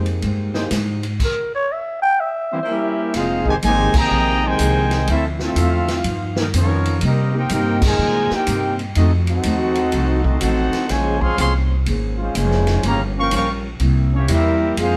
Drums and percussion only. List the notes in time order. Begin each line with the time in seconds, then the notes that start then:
0.06 ride
0.22 ride
0.54 snare
0.71 snare, hi-hat pedal, ride
1.03 ride
1.20 kick, crash
3.14 snare, ride
3.46 kick
3.62 hi-hat pedal, ride
3.94 kick, crash
4.59 hi-hat pedal, ride
4.91 snare, ride
5.07 ride
5.39 snare
5.56 hi-hat pedal, ride
5.88 snare, ride
6.04 ride
6.36 snare
6.54 hi-hat pedal, ride
6.86 ride
7.01 ride
7.49 hi-hat pedal, ride
7.82 kick, crash
8.30 snare
8.47 hi-hat pedal, ride
8.79 ride
8.95 ride
9.27 ride
9.43 hi-hat pedal, ride
9.75 ride
9.92 ride
10.24 kick
10.41 hi-hat pedal, ride
10.73 snare, ride
10.89 snare, ride
11.21 kick
11.38 hi-hat pedal, ride
11.86 ride
12.35 hi-hat pedal, ride
12.51 snare
12.67 snare, ride
12.83 ride
13.31 hi-hat pedal, ride
13.80 ride
14.28 hi-hat pedal, ride
14.77 ride